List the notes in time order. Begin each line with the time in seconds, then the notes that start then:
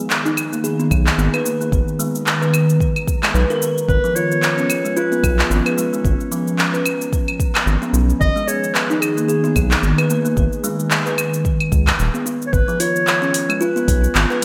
Already playing: D#3 B3 G#4
0.10 clap, shaker
0.25 D#4, shaker
0.37 claves, shaker
0.52 A#3, shaker
0.64 G#4, shaker
0.80 B3, shaker
0.91 B1, kick, claves, shaker
1.07 clap, shaker
1.18 G#1 B3, shaker
1.34 B4, claves, shaker
1.45 A#3, shaker
1.61 A#3, shaker
1.72 G#1 A#5, kick, shaker
1.88 shaker
1.99 G#3, shaker
2.15 shaker
2.27 clap, shaker
2.42 B4, shaker
2.54 claves, shaker
2.69 shaker
2.80 kick, shaker
2.96 claves, shaker
3.07 kick, shaker
3.23 G#3, clap, claves, shaker
3.34 B1 B4, shaker
3.50 A#4, shaker
3.62 B4, shaker
3.78 shaker
3.88 G#1 F3 C#4 G#4 B4, kick, shaker
4.04 F3, shaker
4.15 F4 C#5, shaker
4.32 shaker
4.43 clap, shaker
4.58 C#4, shaker
4.70 claves, shaker
4.85 G#3, shaker
4.97 F4 B4, shaker
5.12 B3, shaker
5.23 B1, kick, claves, shaker
5.39 clap, shaker
5.50 G#1 B3, shaker
5.66 B4, claves, shaker
5.77 G#3, shaker
5.93 G#3, shaker
6.04 G#1 A#5, kick, shaker
6.20 shaker
6.32 F3, shaker
6.47 shaker
6.59 clap, shaker
6.74 B4, shaker
6.86 claves, shaker
7.01 shaker
7.13 kick, shaker
7.28 claves, shaker
7.40 kick, shaker
7.55 clap, claves, shaker
7.66 G#1, shaker
7.82 B3, shaker
7.93 B1 B3, shaker
8.10 shaker
8.20 G#1 D#3 G#4 D#5, kick, shaker
8.36 G#3, shaker
8.47 G#4 C#5, shaker
8.64 shaker
8.74 B4, clap, shaker
8.90 D#4, shaker
9.00 G#4, claves, shaker
9.17 A#3, shaker
9.28 G#4, shaker
9.44 B3, shaker
9.56 B1, kick, claves, shaker
9.71 clap, shaker
9.83 G#1 B3, shaker
9.98 B4, claves, shaker
10.10 A#3, shaker
10.25 A#3, shaker
10.37 G#1, kick, shaker
10.53 shaker
10.64 G#3, shaker
10.80 shaker
10.91 clap, shaker
11.06 B4, shaker
11.18 claves, shaker
11.34 shaker
11.45 kick, shaker
11.60 claves, shaker
11.72 C#2, kick, shaker
11.87 kick, clap, claves, shaker
11.99 D#1, shaker
12.14 B3, shaker
12.26 B3, shaker
12.42 shaker
12.47 C#5
12.53 G#1 B4, kick, shaker
12.68 F3, shaker
12.80 F4 C#5, open hi-hat, shaker
12.96 shaker
13.07 clap, shaker
13.22 C#4, shaker
13.34 open hi-hat, shaker
13.49 G#3, claves, shaker
13.55 C#5
13.61 F4 B4, shaker
13.76 B3, shaker
13.88 B1, kick, open hi-hat, shaker
14.04 shaker
14.15 G#1 B3, clap, shaker
14.30 B4, shaker